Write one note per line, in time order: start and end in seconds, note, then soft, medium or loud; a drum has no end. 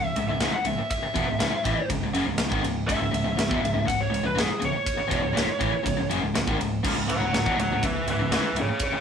0.00 0.15 C#1 medium
0.00 0.11 C#2 medium
0.00 0.12 G#2 medium
0.00 0.07 F#5 medium
0.07 0.27 E5 medium
0.15 0.26 C#1 medium
0.15 0.28 C#2 medium
0.15 0.29 G#2 medium
0.15 ride medium
0.26 0.38 C#1 medium
0.26 0.40 C#2 medium
0.26 0.40 G#2 medium
0.26 0.53 E5 medium
0.39 0.51 C#1 medium
0.39 0.52 C#2 medium
0.39 0.53 G#2 medium
0.39 snare loud
0.39 ride medium
0.52 0.67 F#5 medium
0.52 muted fingered electric bass stroke soft
0.52 muted distorted electric guitar stroke medium
0.52 muted overdriven electric guitar stroke medium
0.64 0.77 C#1 medium
0.64 0.77 C#2 medium
0.64 0.78 G#2 medium
0.64 0.90 E5 medium
0.64 ride medium
0.77 muted fingered electric bass stroke soft
0.77 muted overdriven electric guitar stroke medium
0.77 muted distorted electric guitar stroke medium
0.90 1.87 E5 medium
0.90 kick loud
0.90 ride medium
1.02 muted fingered electric bass stroke soft
1.02 muted overdriven electric guitar stroke medium
1.02 muted distorted electric guitar stroke medium
1.14 1.27 E1 medium
1.14 1.26 E2 medium
1.14 1.27 B2 loud
1.14 kick loud
1.14 ride medium
1.26 1.39 C#1 medium
1.26 1.38 C#2 medium
1.26 1.39 G#2 medium
1.39 1.51 C#1 medium
1.39 1.51 C#2 medium
1.39 1.52 G#2 medium
1.39 snare loud
1.39 ride medium
1.51 muted fingered electric bass stroke soft
1.51 muted distorted electric guitar stroke medium
1.51 muted overdriven electric guitar stroke medium
1.64 1.74 A1 medium
1.64 1.76 A2 medium
1.64 1.77 E3 medium
1.64 kick loud
1.64 ride medium
1.75 muted fingered electric bass stroke soft
1.75 muted distorted electric guitar stroke medium
1.75 muted overdriven electric guitar stroke medium
1.89 1.99 C#1 medium
1.89 2.02 C#2 medium
1.89 2.02 G#2 medium
1.89 kick medium
1.89 ride medium
2.00 2.12 C#1 medium
2.00 2.13 C#2 medium
2.00 2.14 G#2 medium
2.12 2.25 F#1 medium
2.12 2.25 F#2 medium
2.12 2.26 C#3 medium
2.12 ride medium
2.26 2.37 C#1 medium
2.26 2.38 C#2 medium
2.26 2.39 G#2 medium
2.37 2.50 C#1 medium
2.37 2.49 C#2 medium
2.37 2.48 G#2 medium
2.37 snare loud
2.37 ride loud
2.50 2.63 G#1 medium
2.50 2.62 G#2 medium
2.50 2.63 D#3 loud
2.50 kick loud
2.63 2.87 C#1 medium
2.63 2.83 C#2 medium
2.63 2.84 G#2 medium
2.63 ride medium
2.88 2.99 C#1 medium
2.88 2.99 C#2 medium
2.88 3.00 G#2 loud
2.88 3.84 E5 loud
2.88 kick loud
2.88 ride loud
2.99 3.11 C#1 medium
2.99 3.10 C#2 medium
2.99 3.11 G#2 medium
3.12 3.23 C#1 medium
3.12 3.23 C#2 medium
3.12 3.23 G#2 medium
3.12 ride medium
3.24 3.36 C#1 medium
3.24 3.36 C#2 medium
3.24 3.36 G#2 medium
3.36 3.49 C#1 medium
3.36 3.49 C#2 medium
3.36 3.50 G#2 medium
3.36 snare loud
3.36 ride medium
3.49 3.60 E1 medium
3.49 3.61 E2 medium
3.49 3.62 B2 medium
3.49 kick loud
3.61 3.73 C#1 medium
3.61 3.73 C#2 medium
3.61 3.73 G#2 medium
3.65 ride medium
3.74 3.86 C#1 medium
3.74 3.84 C#2 medium
3.74 3.84 G#2 medium
3.85 4.11 C#1 medium
3.85 4.06 C#2 medium
3.85 4.06 G#2 medium
3.85 4.00 F#5 medium
3.85 kick medium
3.89 ride medium
4.01 4.24 C#5 medium
4.10 4.23 C#1 medium
4.10 4.22 C#2 medium
4.10 4.22 G#2 medium
4.14 ride medium
4.23 4.35 C#1 medium
4.23 4.34 C#2 medium
4.23 4.35 G#2 medium
4.23 4.40 B4 medium
4.35 4.48 C#1 medium
4.35 4.47 C#2 medium
4.35 4.48 G#2 loud
4.35 snare loud
4.35 ride medium
4.40 4.62 G#4 medium
4.48 muted distorted electric guitar stroke medium
4.48 muted overdriven electric guitar stroke medium
4.60 4.73 C#1 medium
4.60 4.71 C#2 medium
4.60 4.73 G#2 medium
4.60 ride medium
4.65 6.07 C#5 loud
4.72 muted distorted electric guitar stroke medium
4.72 muted fingered electric bass stroke soft
4.76 muted overdriven electric guitar stroke medium
4.86 kick loud
4.86 ride loud
4.97 muted distorted electric guitar stroke medium
4.97 muted overdriven electric guitar stroke medium
4.97 muted fingered electric bass stroke soft
5.08 5.23 E1 medium
5.08 5.20 E2 medium
5.08 5.21 B2 medium
5.08 kick loud
5.12 ride medium
5.20 5.35 C#1 medium
5.20 5.32 C#2 medium
5.20 5.33 G#2 medium
5.33 5.47 C#1 loud
5.33 5.45 C#2 loud
5.33 5.46 G#2 loud
5.37 snare loud
5.37 ride medium
5.46 muted distorted electric guitar stroke medium
5.46 muted overdriven electric guitar stroke medium
5.46 muted fingered electric bass stroke soft
5.59 5.72 A1 medium
5.59 5.71 A2 medium
5.59 5.72 E3 loud
5.59 kick loud
5.59 ride medium
5.72 muted distorted electric guitar stroke medium
5.72 muted overdriven electric guitar stroke soft
5.83 5.97 C#1 medium
5.83 5.95 C#2 medium
5.83 5.96 G#2 medium
5.83 kick medium
5.83 ride medium
5.97 6.09 C#1 medium
5.97 6.09 C#2 medium
5.97 6.09 G#2 medium
6.09 6.21 F#1 medium
6.09 6.21 F#2 medium
6.09 6.21 C#3 medium
6.09 ride medium
6.21 6.34 C#1 medium
6.21 6.33 C#2 medium
6.21 6.33 G#2 medium
6.34 6.46 C#1 medium
6.34 6.46 C#2 medium
6.34 6.46 G#2 medium
6.34 snare loud
6.34 ride loud
6.47 6.58 G#1 medium
6.47 6.58 G#2 medium
6.47 6.59 D#3 loud
6.47 kick medium
6.58 6.82 C#1 medium
6.58 6.78 C#2 medium
6.58 6.78 G#2 medium
6.58 ride medium
6.83 6.95 C#1 medium
6.83 6.95 C#2 loud
6.83 6.95 G#2 loud
6.83 kick loud
6.83 crash loud
6.96 7.07 C#1 medium
6.96 7.06 C#2 medium
6.96 7.07 G#2 medium
7.07 7.19 C#1 medium
7.07 7.19 C#2 medium
7.07 7.19 G#2 medium
7.07 7.32 C#5 medium
7.07 7.33 F#5 loud
7.07 ride medium
7.20 7.32 C#1 medium
7.20 7.32 C#2 medium
7.20 7.32 G#2 medium
7.33 7.44 C#1 medium
7.33 7.45 C#2 medium
7.33 7.45 G#2 medium
7.33 7.56 C#5 medium
7.33 7.57 F#5 medium
7.33 snare loud
7.33 ride medium
7.46 7.56 E1 medium
7.46 7.57 E2 loud
7.46 7.57 B2 loud
7.46 kick loud
7.57 7.68 C#1 medium
7.57 7.70 C#2 medium
7.57 7.71 G#2 medium
7.57 7.81 C#5 medium
7.57 7.82 F#5 loud
7.57 ride medium
7.69 7.80 C#1 medium
7.69 7.81 C#2 medium
7.69 7.82 G#2 medium
7.83 8.04 C#1 medium
7.83 8.02 C#2 medium
7.83 8.02 G#2 medium
7.83 8.06 B4 medium
7.83 8.07 E5 loud
7.83 kick medium
7.83 ride medium
8.05 8.16 C#1 medium
8.05 8.18 C#2 medium
8.05 8.18 G#2 medium
8.05 ride medium
8.11 8.31 B4 medium
8.11 8.33 E5 medium
8.17 8.27 C#1 medium
8.17 8.30 C#2 medium
8.17 8.31 G#2 medium
8.28 8.41 C#1 medium
8.28 8.43 C#2 medium
8.28 ride medium
8.32 8.43 G#2 loud
8.32 8.56 B4 medium
8.32 8.57 E5 medium
8.32 snare loud
8.44 muted overdriven electric guitar stroke medium
8.44 muted distorted electric guitar stroke medium
8.52 8.65 C#1 medium
8.56 8.67 C#2 medium
8.56 8.68 G#2 medium
8.56 ride medium
8.61 8.81 G#4 medium
8.61 8.82 C#5 loud
8.67 muted overdriven electric guitar stroke medium
8.67 muted distorted electric guitar stroke medium
8.80 9.00 G#4 medium
8.80 kick loud
8.80 ride medium
8.84 9.00 C#5 medium
8.92 muted fingered electric bass stroke soft
8.92 muted distorted electric guitar stroke medium
8.92 muted overdriven electric guitar stroke medium